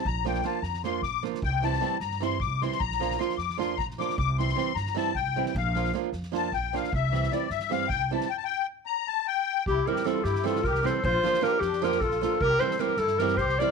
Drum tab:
SD |--ooo-ooo-o-oo|--ooo-ooo-o-oo|-oooooooo-oooo|--ooo-ooo-o--o|
BD |o---------o---|o---------o---|o---------o---|o---------o---|

SD |--ooo-ooo-o-oo|--ooo-ooo-o--o|--------------|---oo-ooooooo-|
BD |o---------o---|o---------o---|--------------|o---------o---|

SD |--ooo-ooooooo-|---oo-ooooooo-|
BD |o---------o---|o---------o---|